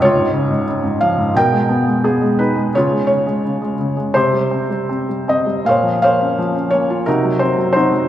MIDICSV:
0, 0, Header, 1, 2, 480
1, 0, Start_track
1, 0, Tempo, 684151
1, 10, Time_signature, 4, 2, 24, 8
1, 2410, Tempo, 715990
1, 2890, Tempo, 754717
1, 3850, Tempo, 693642
1, 5527, End_track
2, 0, Start_track
2, 0, Title_t, "Felt piano"
2, 0, Program_c, 0, 0
2, 0, Control_c, 0, 64, 127
2, 0, Note_on_c, 0, 37, 62
2, 13, Note_on_c, 0, 73, 93
2, 19, Control_c, 0, 64, 0
2, 33, Note_on_c, 0, 65, 66
2, 115, Note_on_c, 0, 44, 46
2, 159, Control_c, 0, 64, 127
2, 235, Note_on_c, 0, 49, 45
2, 344, Note_off_c, 0, 44, 0
2, 354, Note_on_c, 0, 44, 45
2, 450, Note_off_c, 0, 73, 0
2, 460, Note_off_c, 0, 49, 0
2, 470, Note_on_c, 0, 49, 48
2, 575, Note_off_c, 0, 44, 0
2, 586, Note_on_c, 0, 44, 44
2, 706, Note_on_c, 0, 77, 81
2, 717, Note_on_c, 0, 53, 47
2, 819, Note_off_c, 0, 44, 0
2, 830, Note_on_c, 0, 44, 45
2, 918, Note_off_c, 0, 37, 0
2, 932, Note_off_c, 0, 77, 0
2, 936, Note_off_c, 0, 49, 0
2, 937, Note_off_c, 0, 65, 0
2, 943, Note_on_c, 0, 47, 57
2, 948, Note_off_c, 0, 44, 0
2, 948, Note_off_c, 0, 53, 0
2, 958, Note_on_c, 0, 79, 91
2, 964, Control_c, 0, 64, 0
2, 964, Note_on_c, 0, 70, 63
2, 1067, Control_c, 0, 64, 127
2, 1070, Note_on_c, 0, 56, 44
2, 1186, Note_on_c, 0, 59, 46
2, 1305, Note_off_c, 0, 56, 0
2, 1315, Note_on_c, 0, 56, 42
2, 1411, Note_off_c, 0, 79, 0
2, 1424, Note_off_c, 0, 59, 0
2, 1433, Note_on_c, 0, 68, 69
2, 1435, Note_on_c, 0, 59, 45
2, 1544, Note_off_c, 0, 56, 0
2, 1555, Note_on_c, 0, 56, 45
2, 1675, Note_on_c, 0, 71, 70
2, 1682, Note_on_c, 0, 63, 45
2, 1687, Note_off_c, 0, 68, 0
2, 1784, Note_off_c, 0, 56, 0
2, 1795, Note_on_c, 0, 56, 39
2, 1891, Note_off_c, 0, 47, 0
2, 1901, Note_off_c, 0, 70, 0
2, 1908, Note_off_c, 0, 59, 0
2, 1916, Note_off_c, 0, 56, 0
2, 1917, Note_off_c, 0, 63, 0
2, 1926, Note_on_c, 0, 49, 56
2, 1928, Note_off_c, 0, 71, 0
2, 1929, Note_on_c, 0, 73, 76
2, 1933, Control_c, 0, 64, 0
2, 1947, Note_on_c, 0, 65, 55
2, 2043, Note_on_c, 0, 56, 43
2, 2066, Control_c, 0, 64, 127
2, 2142, Note_off_c, 0, 73, 0
2, 2153, Note_on_c, 0, 73, 71
2, 2161, Note_off_c, 0, 49, 0
2, 2172, Note_on_c, 0, 49, 41
2, 2279, Note_off_c, 0, 56, 0
2, 2290, Note_on_c, 0, 56, 42
2, 2403, Note_off_c, 0, 49, 0
2, 2413, Note_on_c, 0, 49, 45
2, 2522, Note_off_c, 0, 56, 0
2, 2532, Note_on_c, 0, 56, 40
2, 2615, Note_off_c, 0, 73, 0
2, 2637, Note_off_c, 0, 49, 0
2, 2647, Note_on_c, 0, 49, 41
2, 2755, Note_off_c, 0, 56, 0
2, 2765, Note_on_c, 0, 56, 38
2, 2876, Note_off_c, 0, 65, 0
2, 2883, Note_off_c, 0, 49, 0
2, 2883, Note_on_c, 0, 72, 84
2, 2886, Note_off_c, 0, 56, 0
2, 2889, Note_on_c, 0, 48, 52
2, 2898, Note_on_c, 0, 67, 59
2, 2899, Control_c, 0, 64, 0
2, 2999, Control_c, 0, 64, 127
2, 3004, Note_on_c, 0, 55, 42
2, 3119, Note_on_c, 0, 60, 42
2, 3229, Note_off_c, 0, 55, 0
2, 3239, Note_on_c, 0, 55, 39
2, 3352, Note_off_c, 0, 60, 0
2, 3361, Note_on_c, 0, 60, 41
2, 3476, Note_off_c, 0, 55, 0
2, 3486, Note_on_c, 0, 55, 35
2, 3587, Note_off_c, 0, 72, 0
2, 3598, Note_off_c, 0, 60, 0
2, 3608, Note_on_c, 0, 60, 43
2, 3616, Note_on_c, 0, 75, 68
2, 3715, Note_off_c, 0, 55, 0
2, 3725, Note_on_c, 0, 55, 37
2, 3825, Note_off_c, 0, 48, 0
2, 3830, Note_off_c, 0, 67, 0
2, 3840, Note_off_c, 0, 60, 0
2, 3843, Note_off_c, 0, 55, 0
2, 3843, Note_on_c, 0, 46, 54
2, 3851, Note_on_c, 0, 77, 80
2, 3859, Note_off_c, 0, 75, 0
2, 3861, Control_c, 0, 64, 0
2, 3870, Note_on_c, 0, 73, 59
2, 3871, Note_on_c, 0, 72, 58
2, 3969, Note_on_c, 0, 53, 39
2, 3984, Control_c, 0, 64, 127
2, 4090, Note_off_c, 0, 77, 0
2, 4097, Note_on_c, 0, 58, 41
2, 4100, Note_on_c, 0, 77, 81
2, 4101, Note_off_c, 0, 72, 0
2, 4104, Note_off_c, 0, 73, 0
2, 4112, Note_on_c, 0, 72, 61
2, 4115, Note_on_c, 0, 73, 60
2, 4226, Note_on_c, 0, 61, 42
2, 4339, Note_off_c, 0, 53, 0
2, 4350, Note_on_c, 0, 53, 46
2, 4453, Note_off_c, 0, 61, 0
2, 4464, Note_on_c, 0, 61, 40
2, 4556, Note_off_c, 0, 77, 0
2, 4562, Note_off_c, 0, 73, 0
2, 4573, Note_on_c, 0, 73, 75
2, 4581, Note_off_c, 0, 58, 0
2, 4592, Note_on_c, 0, 58, 44
2, 4710, Note_on_c, 0, 65, 45
2, 4791, Note_off_c, 0, 46, 0
2, 4801, Note_off_c, 0, 73, 0
2, 4802, Note_off_c, 0, 72, 0
2, 4813, Note_off_c, 0, 53, 0
2, 4813, Note_off_c, 0, 61, 0
2, 4819, Note_on_c, 0, 70, 76
2, 4821, Note_off_c, 0, 58, 0
2, 4823, Note_off_c, 0, 65, 0
2, 4824, Note_on_c, 0, 48, 54
2, 4832, Control_c, 0, 64, 0
2, 4834, Note_on_c, 0, 63, 55
2, 4837, Note_on_c, 0, 66, 52
2, 4945, Note_on_c, 0, 54, 44
2, 4970, Control_c, 0, 64, 127
2, 5049, Note_on_c, 0, 72, 72
2, 5058, Note_on_c, 0, 60, 45
2, 5067, Note_off_c, 0, 70, 0
2, 5166, Note_off_c, 0, 54, 0
2, 5176, Note_on_c, 0, 54, 43
2, 5269, Note_off_c, 0, 72, 0
2, 5280, Note_on_c, 0, 72, 80
2, 5291, Note_off_c, 0, 63, 0
2, 5294, Note_off_c, 0, 60, 0
2, 5295, Note_off_c, 0, 66, 0
2, 5301, Note_on_c, 0, 63, 58
2, 5304, Note_on_c, 0, 60, 47
2, 5305, Note_on_c, 0, 66, 52
2, 5407, Note_off_c, 0, 54, 0
2, 5417, Note_on_c, 0, 54, 46
2, 5527, Note_off_c, 0, 48, 0
2, 5527, Note_off_c, 0, 54, 0
2, 5527, Note_off_c, 0, 60, 0
2, 5527, Note_off_c, 0, 63, 0
2, 5527, Note_off_c, 0, 66, 0
2, 5527, Note_off_c, 0, 72, 0
2, 5527, End_track
0, 0, End_of_file